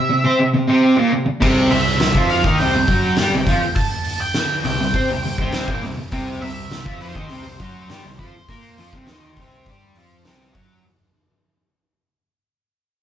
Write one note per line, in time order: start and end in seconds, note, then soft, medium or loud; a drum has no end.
0.00 0.49 E5 medium
0.10 0.24 C3 medium
0.24 0.37 C4 medium
0.24 0.38 C5 medium
0.38 0.53 C3 medium
0.54 0.66 C3 medium
0.68 0.96 C3 medium
0.68 0.97 C4 loud
0.97 1.11 A#2 medium
0.97 1.11 A#3 medium
1.11 1.25 C3 medium
1.26 muted distorted electric guitar stroke medium
1.40 1.69 C2 loud
1.40 1.69 C3 medium
1.40 1.70 C4 loud
1.40 kick loud
1.40 crash loud
1.71 1.98 C2 medium
1.71 1.94 C3 medium
1.71 2.30 E5 medium
1.71 open hi-hat medium
1.87 snare soft
2.00 2.14 C2 medium
2.00 2.15 C3 medium
2.00 snare loud
2.00 open hi-hat medium
2.15 2.42 F2 loud
2.15 2.44 F3 medium
2.15 2.44 F4 medium
2.15 kick loud
2.30 2.60 F5 medium
2.30 open hi-hat medium
2.44 2.58 D#2 loud
2.44 2.59 D#3 medium
2.44 2.59 D#4 medium
2.44 kick loud
2.58 2.72 C2 medium
2.58 2.73 C3 medium
2.58 2.74 C4 loud
2.58 3.75 G5 loud
2.58 open hi-hat medium
2.73 2.87 C2 medium
2.73 2.89 C3 medium
2.88 3.16 F#2 medium
2.88 3.17 F#3 medium
2.88 3.17 F#4 medium
2.88 kick loud
2.88 open hi-hat medium
3.17 3.31 G2 medium
3.17 3.33 G3 medium
3.17 3.33 G4 loud
3.17 snare loud
3.17 open hi-hat medium
3.32 3.46 C2 medium
3.32 3.47 C3 medium
3.46 3.61 F2 medium
3.46 3.61 F3 medium
3.46 3.62 F4 loud
3.46 kick loud
3.46 open hi-hat medium
3.76 4.20 A5 loud
3.76 kick loud
3.76 open hi-hat medium
4.05 open hi-hat medium
4.21 4.64 G5 loud
4.34 snare loud
4.34 open hi-hat medium
4.64 4.79 C2 medium
4.64 4.79 C3 medium
4.64 5.79 G5 medium
4.64 open hi-hat medium
4.80 4.93 C2 medium
4.80 4.95 C3 medium
4.94 5.08 C3 loud
4.94 5.09 C4 medium
4.94 5.09 C5 loud
4.94 kick loud
4.94 open hi-hat medium
5.09 5.23 C2 medium
5.09 5.24 C3 medium
5.23 5.37 C2 medium
5.23 5.39 C3 medium
5.23 open hi-hat medium
5.38 5.66 C2 medium
5.38 5.68 C3 medium
5.38 5.68 C4 loud
5.38 kick loud
5.52 snare loud
5.52 open hi-hat medium
5.68 5.82 A#1 medium
5.68 5.83 A#2 medium
5.68 5.83 A#3 medium
5.68 kick loud
5.82 5.96 C2 medium
5.82 5.96 C3 medium
5.82 open hi-hat medium
5.97 muted picked electric bass stroke soft
5.97 muted distorted electric guitar stroke medium
6.12 6.40 C2 loud
6.12 6.40 C3 medium
6.12 6.41 C4 loud
6.12 kick loud
6.12 open hi-hat medium
6.41 6.69 C2 medium
6.41 6.65 C3 medium
6.41 6.97 E5 loud
6.41 open hi-hat medium
6.70 6.85 C2 medium
6.70 6.84 C3 medium
6.70 snare loud
6.70 open hi-hat medium
6.85 7.14 F2 medium
6.85 7.14 F3 medium
6.85 7.15 F4 loud
6.85 kick loud
7.01 8.18 C5 medium
7.01 open hi-hat medium
7.15 7.29 D#2 loud
7.15 7.30 D#3 medium
7.15 7.30 D#4 loud
7.15 kick loud
7.29 7.44 C2 medium
7.29 7.42 C3 medium
7.29 7.45 C4 medium
7.29 open hi-hat medium
7.43 7.59 C2 medium
7.43 7.59 C3 medium
7.59 7.87 F#2 medium
7.59 7.89 F#3 medium
7.59 7.89 F#4 loud
7.59 kick loud
7.59 open hi-hat medium
7.88 8.04 G2 medium
7.88 8.03 G3 loud
7.88 8.03 G4 medium
7.88 snare loud
7.88 open hi-hat medium
8.05 8.18 C2 medium
8.05 8.18 C3 medium
8.19 8.33 F2 medium
8.19 8.33 F3 medium
8.19 8.33 F4 medium
8.19 10.22 C5 medium
8.19 kick loud
8.19 open hi-hat medium
8.49 8.76 A#2 medium
8.49 8.78 A#3 medium
8.49 8.78 A#4 loud
8.49 kick loud
8.49 open hi-hat medium
8.78 8.92 F2 medium
8.78 8.93 F3 loud
8.78 8.93 F4 loud
8.78 open hi-hat medium
8.93 9.07 C2 medium
8.93 9.08 C3 medium
8.93 9.08 C4 loud
8.93 kick loud
8.93 snare soft
9.07 9.35 D#2 medium
9.07 9.37 D#3 loud
9.07 9.38 D#4 loud
9.07 snare loud
9.07 open hi-hat medium
9.36 9.65 C2 medium
9.36 9.67 C3 medium
9.36 kick loud
9.36 open hi-hat medium
9.40 9.68 C4 loud
9.66 9.94 G2 medium
9.66 9.96 G3 loud
9.66 9.97 G4 medium
9.66 kick loud
9.66 open hi-hat medium
9.95 10.23 F2 medium
9.95 10.24 F3 medium
9.95 10.25 F4 medium
9.95 open hi-hat medium
10.25 10.53 C2 loud
10.25 10.54 C3 loud
10.25 10.54 C4 loud
10.25 snare loud
10.25 open hi-hat medium
10.54 10.83 F#2 medium
10.54 10.84 F#3 medium
10.54 10.84 F#4 loud
10.54 kick loud
10.54 open hi-hat medium